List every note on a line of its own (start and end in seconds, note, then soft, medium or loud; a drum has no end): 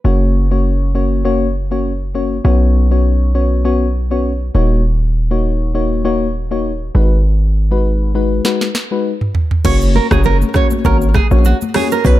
0.04 2.41 F#1 medium
0.04 0.47 A#3 medium
0.04 0.47 C#4 medium
0.04 0.47 F#4 medium
0.04 0.47 C#5 medium
0.51 0.91 A#3 medium
0.51 0.91 C#4 medium
0.51 0.92 F#4 medium
0.51 0.92 C#5 medium
0.95 1.23 A#3 medium
0.95 1.23 C#4 medium
0.95 1.23 F#4 medium
0.95 1.23 C#5 medium
1.25 1.47 A#3 medium
1.25 1.47 C#4 medium
1.25 1.48 F#4 medium
1.25 1.48 C#5 loud
1.71 1.92 A#3 medium
1.71 1.92 C#4 medium
1.71 1.92 F#4 medium
1.71 1.92 C#5 medium
2.14 2.37 A#3 medium
2.14 2.37 C#4 medium
2.14 2.38 F#4 medium
2.14 2.38 C#5 medium
2.44 4.51 B1 medium
2.44 2.87 B3 medium
2.44 2.87 C#4 medium
2.44 2.87 F#4 medium
2.44 2.87 C#5 medium
2.91 3.31 B3 medium
2.91 3.31 C#4 medium
2.91 3.32 F#4 medium
2.91 3.32 C#5 medium
3.34 3.62 B3 medium
3.34 3.63 C#4 medium
3.34 3.63 F#4 medium
3.34 3.63 C#5 medium
3.65 3.87 B3 medium
3.65 3.87 C#4 medium
3.65 3.87 F#4 medium
3.65 3.88 C#5 medium
4.11 4.32 B3 medium
4.11 4.32 C#4 medium
4.11 4.32 F#4 medium
4.11 4.32 C#5 medium
4.54 6.91 D#1 medium
4.54 4.82 A#3 medium
4.54 4.83 D#4 medium
4.54 4.83 F#4 medium
4.54 4.83 C#5 medium
5.31 5.71 A#3 medium
5.31 5.71 D#4 medium
5.31 5.71 F#4 medium
5.31 5.72 C#5 medium
5.74 6.02 A#3 medium
5.74 6.02 D#4 medium
5.74 6.03 F#4 medium
5.74 6.03 C#5 medium
6.05 6.27 A#3 medium
6.05 6.27 D#4 medium
6.05 6.27 F#4 medium
6.05 6.28 C#5 loud
6.51 6.72 A#3 medium
6.51 6.72 D#4 medium
6.51 6.72 F#4 medium
6.51 6.72 C#5 medium
6.95 8.41 G#1 medium
6.95 7.17 G#3 medium
6.95 7.17 D#4 medium
6.95 7.18 F#4 medium
6.95 7.18 B4 medium
7.71 8.11 G#3 medium
7.71 8.12 D#4 medium
7.71 8.12 F#4 medium
7.71 8.12 B4 medium
8.15 8.43 G#3 medium
8.15 8.43 D#4 medium
8.15 8.43 F#4 medium
8.15 8.43 B4 medium
8.45 8.67 G#3 medium
8.45 8.67 D#4 medium
8.45 8.68 F#4 medium
8.45 8.68 B4 loud
8.45 snare medium
8.61 snare medium
8.75 snare medium
8.91 9.12 G#3 medium
8.91 9.12 D#4 medium
8.91 9.12 F#4 medium
8.91 9.12 B4 medium
9.21 mid tom medium
9.35 floor tom loud
9.51 floor tom medium
9.65 10.00 F#1 loud
9.65 10.07 A#3 medium
9.65 10.07 C#4 medium
9.65 10.07 F#4 medium
9.65 10.08 C#5 loud
9.65 9.76 C#5 medium
9.65 kick loud
9.65 crash loud
9.65 low conga medium
9.65 shaker medium
9.81 shaker medium
9.95 10.06 A#4 medium
9.95 high conga medium
10.11 10.44 F#1 loud
10.11 10.51 A#3 medium
10.11 10.51 C#4 medium
10.11 10.52 F#4 medium
10.11 10.21 G#4 medium
10.11 10.52 C#5 medium
10.11 kick loud
10.11 cross-stick loud
10.11 high conga medium
10.11 shaker medium
10.24 10.36 A#4 medium
10.24 low conga medium
10.24 shaker medium
10.42 high conga medium
10.42 shaker soft
10.54 10.82 A#3 medium
10.54 10.83 C#4 medium
10.54 10.83 F#4 medium
10.54 10.83 C#5 medium
10.54 10.66 C#5 medium
10.54 kick loud
10.54 cross-stick medium
10.54 low conga medium
10.54 shaker soft
10.70 high conga medium
10.70 shaker medium
10.85 11.20 G#1 loud
10.85 11.07 A#3 loud
10.85 11.07 C#4 medium
10.85 11.08 F#4 medium
10.85 10.96 A#4 medium
10.85 11.08 C#5 loud
10.85 kick medium
10.85 shaker medium
11.02 shaker medium
11.14 11.26 G#4 medium
11.14 kick loud
11.14 cross-stick loud
11.14 high conga medium
11.14 shaker medium
11.31 11.54 A#1 loud
11.31 11.52 A#3 medium
11.31 11.52 C#4 medium
11.31 11.52 F#4 medium
11.31 11.52 C#5 medium
11.31 shaker medium
11.45 11.56 F#4 medium
11.45 high conga medium
11.45 shaker medium
11.61 high conga medium
11.61 shaker medium
11.74 11.97 A#3 medium
11.74 11.97 C#4 medium
11.74 11.97 F#4 medium
11.74 11.86 G#4 medium
11.74 11.98 C#5 medium
11.74 cross-stick loud
11.74 open hi-hat medium
11.74 low conga medium
11.92 12.06 A#4 medium
11.92 shaker medium
12.04 12.20 B1 loud
12.04 12.20 B3 loud
12.04 12.20 C#4 medium
12.04 12.20 F#4 medium
12.04 12.16 B4 medium
12.04 12.20 C#5 loud
12.04 kick loud
12.04 low conga medium
12.04 shaker medium